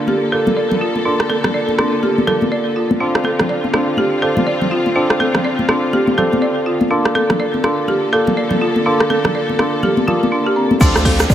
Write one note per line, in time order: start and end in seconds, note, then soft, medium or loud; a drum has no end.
0.00 6.87 D3 medium
0.00 0.30 A#3 medium
0.00 2.97 A#3 medium
0.00 0.30 F4 medium
0.00 0.30 A4 medium
0.00 2.97 A4 medium
0.00 0.30 D5 medium
0.07 0.21 G4 medium
0.07 muted conga soft
0.07 high conga medium
0.32 1.03 A#3 medium
0.32 1.03 F4 medium
0.32 0.45 A4 medium
0.32 1.03 A4 medium
0.32 1.03 D5 medium
0.46 muted conga soft
0.46 high conga loud
0.46 low conga medium
0.57 0.70 D5 medium
0.71 high conga medium
0.71 low conga medium
0.81 0.94 F4 medium
0.95 muted conga soft
1.05 1.76 A#3 medium
1.05 1.18 D4 medium
1.05 1.76 F4 medium
1.05 1.76 A4 medium
1.05 1.76 D5 medium
1.20 cross-stick medium
1.30 1.43 A4 medium
1.30 muted conga soft
1.44 cross-stick medium
1.44 high conga medium
1.44 low conga medium
1.54 1.68 D5 medium
1.68 muted conga soft
1.68 high conga medium
1.78 2.25 A#3 medium
1.78 1.86 D4 medium
1.78 2.25 F4 medium
1.78 2.25 A4 medium
1.78 2.25 D5 medium
1.78 cross-stick medium
1.78 high conga medium
2.03 2.16 G4 medium
2.03 muted conga soft
2.18 high conga medium
2.27 2.98 A#3 medium
2.27 2.98 F4 medium
2.27 2.98 A4 medium
2.27 2.40 A4 medium
2.27 2.98 D5 medium
2.27 low conga loud
2.41 muted conga soft
2.41 high conga loud
2.52 2.66 D5 medium
2.76 2.89 F4 medium
2.91 muted conga soft
2.91 high conga loud
3.00 3.71 C4 medium
3.00 6.87 C4 medium
3.00 3.14 D4 medium
3.00 3.71 F4 medium
3.00 6.87 F4 medium
3.00 3.71 A4 medium
3.00 3.71 D5 medium
3.15 cross-stick medium
3.24 3.38 A4 medium
3.24 muted conga soft
3.39 cross-stick medium
3.39 high conga medium
3.39 low conga medium
3.49 3.63 D5 medium
3.64 muted conga soft
3.64 high conga medium
3.74 4.20 C4 medium
3.74 3.81 D4 medium
3.74 4.20 F4 medium
3.74 4.20 A4 medium
3.74 4.20 D5 medium
3.74 cross-stick medium
3.74 high conga medium
3.97 4.11 G4 medium
3.97 muted conga soft
3.97 high conga medium
4.22 4.93 C4 medium
4.22 4.93 F4 medium
4.22 4.35 A4 medium
4.22 4.93 A4 medium
4.22 4.93 D5 medium
4.37 muted conga soft
4.37 high conga medium
4.37 low conga medium
4.47 4.61 D5 medium
4.61 high conga medium
4.61 low conga medium
4.71 4.84 F4 medium
4.86 muted conga soft
4.96 5.67 C4 medium
4.96 5.09 D4 medium
4.96 5.67 F4 medium
4.96 5.67 A4 medium
4.96 5.67 D5 loud
5.10 cross-stick medium
5.20 5.33 A4 medium
5.20 muted conga soft
5.35 cross-stick medium
5.35 high conga medium
5.35 low conga medium
5.44 5.58 D5 medium
5.59 muted conga soft
5.59 high conga medium
5.69 6.15 C4 medium
5.69 5.77 D4 medium
5.69 6.15 F4 medium
5.69 6.15 A4 medium
5.69 6.15 D5 medium
5.69 cross-stick medium
5.69 high conga medium
5.93 6.06 G4 medium
5.93 muted conga medium
6.07 high conga medium
6.18 6.88 C4 medium
6.18 6.88 F4 medium
6.18 6.88 A4 medium
6.18 6.31 A4 medium
6.18 6.88 D5 medium
6.18 low conga medium
6.32 muted conga soft
6.32 high conga loud
6.42 6.56 D5 medium
6.66 6.79 F4 medium
6.81 muted conga medium
6.81 high conga loud
6.91 10.77 D3 medium
6.91 10.77 A#3 medium
6.91 7.62 A#3 medium
6.91 7.04 D4 medium
6.91 7.62 F4 medium
6.91 10.77 A4 medium
6.91 7.62 A4 medium
6.91 7.62 D5 medium
7.05 cross-stick medium
7.15 7.28 A4 medium
7.15 muted conga soft
7.30 cross-stick medium
7.30 high conga medium
7.30 low conga medium
7.40 7.53 D5 medium
7.54 muted conga soft
7.54 high conga medium
7.64 8.10 A#3 medium
7.64 7.72 D4 medium
7.64 8.10 F4 medium
7.64 8.10 A4 medium
7.64 8.10 D5 medium
7.64 cross-stick medium
7.64 high conga medium
7.88 8.01 G4 medium
7.88 muted conga soft
7.88 high conga medium
8.13 8.84 A#3 medium
8.13 8.84 F4 medium
8.13 8.26 A4 medium
8.13 8.84 A4 medium
8.13 8.84 D5 medium
8.27 muted conga soft
8.27 high conga medium
8.27 low conga medium
8.37 8.51 D5 medium
8.51 high conga medium
8.51 low conga loud
8.61 8.75 F4 medium
8.76 muted conga soft
8.86 9.57 A#3 medium
8.86 8.99 D4 medium
8.86 9.57 F4 medium
8.86 9.57 A4 medium
8.86 9.57 D5 medium
9.00 cross-stick medium
9.10 9.23 A4 medium
9.10 muted conga medium
9.24 cross-stick medium
9.24 high conga medium
9.24 low conga loud
9.35 9.49 D5 medium
9.49 muted conga soft
9.49 high conga medium
9.59 10.06 A#3 medium
9.59 9.67 D4 medium
9.59 10.06 F4 medium
9.59 10.06 A4 medium
9.59 10.06 D5 medium
9.59 cross-stick medium
9.59 high conga medium
9.83 9.96 G4 medium
9.83 muted conga medium
9.83 low conga medium
9.97 high conga loud
10.07 10.79 A#3 medium
10.07 10.16 F4 medium
10.07 10.79 F4 medium
10.07 10.79 A4 medium
10.07 10.79 D5 medium
10.07 low conga loud
10.23 muted conga soft
10.23 high conga medium
10.32 10.45 D4 medium
10.46 10.52 G4 medium
10.56 10.70 C4 medium
10.71 muted conga medium
10.71 high conga medium
10.81 10.91 D2 loud
10.81 11.35 D3 medium
10.81 11.35 C4 medium
10.81 10.94 D4 medium
10.81 11.35 F4 medium
10.81 11.35 A4 medium
10.81 11.35 D5 loud
10.81 kick loud
10.81 crash loud
10.81 downlifter medium
10.81 high conga loud
10.81 shaker medium
10.96 11.25 D2 loud
10.96 cross-stick medium
10.96 shaker soft
11.05 11.18 A4 loud
11.05 kick medium
11.05 open hi-hat medium
11.05 muted conga medium
11.20 cross-stick medium
11.20 shaker medium
11.30 11.35 D2 medium
11.30 11.35 D5 medium
11.30 kick loud
11.30 shaker medium